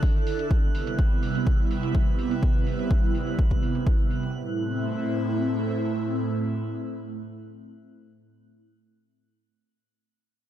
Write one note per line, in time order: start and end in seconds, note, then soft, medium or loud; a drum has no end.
0.00 0.47 D3 medium
0.00 0.47 D4 medium
0.00 0.47 E4 medium
0.00 0.47 A4 medium
0.00 4.36 F#6 medium
0.00 kick loud
0.00 open hi-hat medium
0.27 open hi-hat loud
0.39 closed hi-hat medium
0.51 4.31 C3 medium
0.51 4.31 G3 medium
0.51 4.31 B3 medium
0.51 4.31 E4 medium
0.51 kick loud
0.51 closed hi-hat soft
0.75 open hi-hat loud
0.87 closed hi-hat medium
0.99 kick loud
0.99 closed hi-hat medium
1.23 open hi-hat medium
1.35 open hi-hat medium
1.47 kick loud
1.47 closed hi-hat soft
1.71 open hi-hat medium
1.83 closed hi-hat medium
1.95 kick loud
1.95 closed hi-hat medium
2.19 open hi-hat loud
2.31 closed hi-hat medium
2.43 kick loud
2.43 closed hi-hat medium
2.67 open hi-hat loud
2.79 closed hi-hat medium
2.91 kick loud
2.91 closed hi-hat medium
3.15 open hi-hat medium
3.27 open hi-hat medium
3.39 kick loud
3.39 closed hi-hat soft
3.51 kick medium
3.63 open hi-hat medium
3.75 closed hi-hat medium
3.87 kick loud
3.87 open hi-hat medium
4.11 open hi-hat loud
4.23 closed hi-hat medium
4.35 8.09 A2 medium
4.35 8.09 A3 medium
4.35 8.09 C4 medium
4.35 8.09 E4 medium